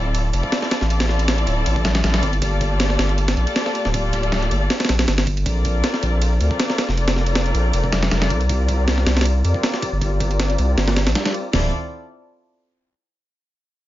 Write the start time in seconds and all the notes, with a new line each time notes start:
Already playing: D1 C4 E4 F4 A4 D5
0.15 ride
0.33 F1 C4 E4 F4 A4 D5, ride
0.43 kick
0.52 snare, ride
0.62 snare
0.71 snare, ride
0.81 A1, snare
0.90 C4 E4 F4 A4 D5, ride
1.00 snare, ride
1.09 snare
1.19 ride
1.28 snare, ride
1.38 ride
1.47 D1, ride
1.66 A1, ride
1.76 kick
1.85 A1, snare, ride
1.95 snare, ride
2.04 A1 C4 E4 F4 A4 D5, snare, ride
2.14 snare, ride
2.23 G1, kick, ride
2.33 ride
2.42 A#3 F4 G4 A4 D5, kick, ride
2.61 kick, ride
2.80 snare, ride
2.90 snare
2.99 G1, snare, ride
3.09 ride
3.18 ride
3.28 snare, ride
3.37 A#1 A#3 F4 G4 A4 D5, ride
3.47 ride
3.56 snare, ride
3.66 snare
3.75 ride
3.85 D1, snare
3.94 A#3 F4 G4 A4 D5, kick, ride
4.13 kick, ride
4.23 ride
4.32 snare, ride
4.42 ride
4.51 G1, ride
4.70 snare, ride
4.80 snare, ride
4.85 snare, ride
4.89 A#1, snare, ride
4.99 snare, ride
5.08 G1, snare, ride
5.18 snare, ride
5.27 kick, ride
5.37 ride
5.46 A#1 C4 F4 A4 A#4 D5, kick, ride
5.65 kick, ride
5.84 snare, ride
5.94 snare
6.03 A#1, kick, ride
6.22 ride
6.40 D2 C4 F4 A4 A#4 D5, ride
6.51 kick
6.60 snare, ride
6.70 snare
6.78 snare, ride
6.88 F1, snare
6.97 C4 F4 A4 A#4 D5, ride
7.08 snare, ride
7.16 snare
7.26 ride
7.35 snare, ride
7.46 ride
7.54 A#1, ride
7.73 F1, ride
7.84 kick
7.92 F1, snare, ride
8.03 snare, ride
8.11 F1 C4 F4 A4 A#4 D5, snare, ride
8.22 snare, ride
8.30 C2, kick, ride
8.41 ride
8.49 C4 F4 G4 A#4 D5, kick, ride
8.69 kick, ride
8.88 snare, ride
8.98 snare
9.06 C2, snare, ride
9.17 snare, ride
9.21 snare, ride
9.26 ride
9.44 F2 C4 F4 G4 A#4 D5, ride
9.54 kick
9.63 snare, ride
9.74 snare
9.82 kick, ride
9.92 G1
10.01 C4 F4 G4 A#4 D5, kick, ride
10.20 kick, ride
10.31 ride
10.40 snare, ride
10.50 ride
10.58 C2, ride
10.77 G1, snare, ride
10.88 snare, ride
10.96 snare, ride
11.06 A#1, snare, ride
11.15 C4 F4 G4 A#4 D5, snare, ride
11.25 snare, ride
11.34 ride
11.53 D1 C4 E4 F4 A4 D5, snare, floor tom, open hi-hat